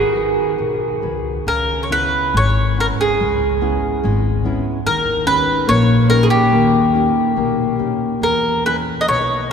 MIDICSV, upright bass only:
0, 0, Header, 1, 2, 480
1, 0, Start_track
1, 0, Tempo, 867052
1, 812, Time_signature, 2, 2, 24, 8
1, 1775, Tempo, 829876
1, 3695, Tempo, 853485
1, 5381, End_track
2, 0, Start_track
2, 0, Title_t, "Upright bass"
2, 0, Program_c, 0, 32
2, 329, Note_on_c, 0, 35, 65
2, 546, Note_off_c, 0, 35, 0
2, 571, Note_on_c, 0, 37, 60
2, 790, Note_off_c, 0, 37, 0
2, 812, Note_on_c, 0, 37, 74
2, 1128, Note_off_c, 0, 37, 0
2, 1296, Note_on_c, 0, 32, 86
2, 1607, Note_off_c, 0, 32, 0
2, 1780, Note_on_c, 0, 37, 78
2, 2092, Note_off_c, 0, 37, 0
2, 2262, Note_on_c, 0, 32, 89
2, 2570, Note_off_c, 0, 32, 0
2, 2733, Note_on_c, 0, 39, 80
2, 3043, Note_off_c, 0, 39, 0
2, 3213, Note_on_c, 0, 34, 105
2, 3527, Note_off_c, 0, 34, 0
2, 3693, Note_on_c, 0, 39, 83
2, 4003, Note_off_c, 0, 39, 0
2, 4166, Note_on_c, 0, 35, 77
2, 4480, Note_off_c, 0, 35, 0
2, 4645, Note_on_c, 0, 40, 69
2, 4962, Note_off_c, 0, 40, 0
2, 5135, Note_on_c, 0, 35, 88
2, 5381, Note_off_c, 0, 35, 0
2, 5381, End_track
0, 0, End_of_file